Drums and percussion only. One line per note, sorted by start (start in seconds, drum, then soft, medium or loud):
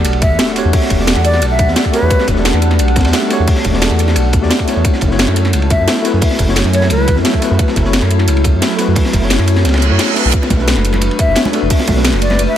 0.05 closed hi-hat loud
0.05 ride medium
0.13 ride soft
0.22 kick loud
0.22 closed hi-hat medium
0.22 ride medium
0.39 snare loud
0.39 closed hi-hat loud
0.39 ride medium
0.48 snare medium
0.56 snare medium
0.56 open hi-hat medium
0.56 ride medium
0.73 kick loud
0.73 closed hi-hat loud
0.73 open hi-hat medium
0.82 snare soft
0.90 kick medium
0.90 closed hi-hat medium
0.90 ride medium
0.99 snare medium
1.07 snare loud
1.07 closed hi-hat medium
1.07 ride medium
1.16 snare medium
1.24 closed hi-hat medium
1.24 ride medium
1.33 snare soft
1.42 closed hi-hat medium
1.42 ride medium
1.59 kick loud
1.59 closed hi-hat medium
1.59 ride medium
1.68 snare soft
1.76 snare loud
1.76 closed hi-hat medium
1.76 ride medium
1.84 kick medium
1.84 ride soft
1.93 snare medium
1.93 open hi-hat medium
1.93 ride medium
2.10 kick loud
2.10 closed hi-hat medium
2.10 ride medium
2.19 snare soft
2.28 kick medium
2.28 snare soft
2.28 closed hi-hat medium
2.28 ride medium
2.36 snare soft
2.45 snare loud
2.45 closed hi-hat medium
2.45 ride medium
2.54 snare medium
2.62 closed hi-hat medium
2.62 ride medium
2.71 snare soft
2.71 ride soft
2.79 closed hi-hat medium
2.79 ride medium
2.88 ride soft
2.96 kick loud
2.96 snare medium
2.96 closed hi-hat medium
2.96 ride medium
3.00 snare medium
3.00 ride medium
3.05 snare loud
3.05 ride medium
3.13 snare loud
3.13 closed hi-hat medium
3.13 ride medium
3.22 snare medium
3.30 snare medium
3.30 open hi-hat medium
3.30 ride medium
3.48 kick loud
3.48 closed hi-hat medium
3.48 open hi-hat medium
3.56 snare soft
3.64 kick medium
3.64 closed hi-hat medium
3.64 ride medium
3.73 snare medium
3.82 snare loud
3.82 closed hi-hat medium
3.82 ride loud
3.91 snare medium
3.99 closed hi-hat medium
3.99 ride medium
4.08 snare soft
4.16 closed hi-hat medium
4.16 ride loud
4.33 kick loud
4.33 closed hi-hat medium
4.33 ride medium
4.43 snare soft
4.50 snare loud
4.50 closed hi-hat medium
4.50 ride medium
4.59 kick medium
4.59 ride soft
4.67 snare medium
4.67 open hi-hat medium
4.67 ride medium
4.84 kick loud
4.84 closed hi-hat medium
4.84 ride medium
4.93 snare soft
5.01 kick medium
5.01 snare soft
5.01 closed hi-hat medium
5.01 ride medium
5.11 snare soft
5.19 snare loud
5.19 closed hi-hat medium
5.19 ride medium
5.28 snare medium
5.36 closed hi-hat medium
5.36 ride medium
5.45 snare soft
5.45 ride soft
5.53 closed hi-hat medium
5.53 ride loud
5.62 ride soft
5.70 kick loud
5.70 closed hi-hat medium
5.70 ride medium
5.88 snare loud
5.88 closed hi-hat medium
5.88 ride medium
5.97 snare soft
6.05 snare medium
6.05 open hi-hat medium
6.05 ride medium
6.22 kick loud
6.22 closed hi-hat medium
6.22 open hi-hat medium
6.31 snare soft
6.39 kick medium
6.39 closed hi-hat medium
6.39 ride medium
6.48 snare medium
6.56 snare loud
6.56 closed hi-hat loud
6.56 ride medium
6.65 snare medium
6.73 closed hi-hat medium
6.73 ride medium
6.82 snare medium
6.82 snare soft
6.90 closed hi-hat medium
6.90 ride loud
7.08 kick medium
7.08 closed hi-hat medium
7.08 ride medium
7.16 snare soft
7.25 snare loud
7.25 closed hi-hat medium
7.25 ride medium
7.34 kick medium
7.34 ride soft
7.42 snare medium
7.42 open hi-hat medium
7.42 ride medium
7.59 kick loud
7.59 closed hi-hat loud
7.59 ride medium
7.68 snare medium
7.68 snare soft
7.76 kick medium
7.76 snare soft
7.76 closed hi-hat medium
7.76 ride medium
7.85 snare soft
7.93 snare loud
7.93 closed hi-hat loud
7.93 ride medium
8.02 snare medium
8.11 closed hi-hat medium
8.11 ride medium
8.19 snare soft
8.19 ride soft
8.28 closed hi-hat medium
8.28 ride medium
8.37 ride soft
8.44 kick medium
8.44 closed hi-hat medium
8.44 ride medium
8.62 snare loud
8.62 closed hi-hat loud
8.62 ride medium
8.70 snare soft
8.78 snare medium
8.78 open hi-hat medium
8.78 ride medium
8.96 kick loud
8.96 closed hi-hat loud
8.96 open hi-hat medium
9.05 snare soft
9.13 kick medium
9.13 closed hi-hat medium
9.13 ride medium
9.22 snare soft
9.30 snare loud
9.30 closed hi-hat medium
9.30 ride medium
9.39 snare medium
9.47 closed hi-hat medium
9.47 ride medium
9.56 snare medium
9.56 snare soft
9.64 snare medium
9.64 closed hi-hat medium
9.64 ride medium
9.69 snare medium
9.69 ride medium
9.74 snare medium
9.74 ride medium
9.78 snare medium
9.78 ride medium
9.82 closed hi-hat medium
9.99 snare loud
9.99 closed hi-hat loud
9.99 ride medium
10.08 ride soft
10.16 snare medium
10.16 open hi-hat medium
10.16 ride medium
10.33 kick loud
10.33 closed hi-hat loud
10.33 ride medium
10.42 snare soft
10.42 high bongo medium
10.50 kick medium
10.50 snare soft
10.50 closed hi-hat medium
10.50 ride medium
10.50 high conga loud
10.59 snare soft
10.68 snare loud
10.68 closed hi-hat loud
10.68 ride medium
10.76 snare medium
10.85 closed hi-hat medium
10.85 ride medium
10.93 snare soft
10.93 ride soft
10.93 high conga medium
11.01 closed hi-hat loud
11.01 ride loud
11.11 ride soft
11.19 kick loud
11.19 closed hi-hat medium
11.19 ride medium
11.35 snare loud
11.35 closed hi-hat medium
11.35 ride medium
11.45 snare medium
11.45 high conga loud
11.53 snare medium
11.53 open hi-hat medium
11.53 ride medium
11.70 kick loud
11.70 closed hi-hat loud
11.70 open hi-hat medium
11.79 snare soft
11.79 high bongo medium
11.88 kick medium
11.88 closed hi-hat medium
11.88 ride medium
11.88 high conga loud
11.97 snare medium
12.05 snare loud
12.05 closed hi-hat loud
12.05 ride medium
12.13 snare medium
12.22 closed hi-hat medium
12.22 ride medium
12.30 snare medium
12.30 snare soft
12.30 high conga medium
12.39 closed hi-hat medium
12.39 ride medium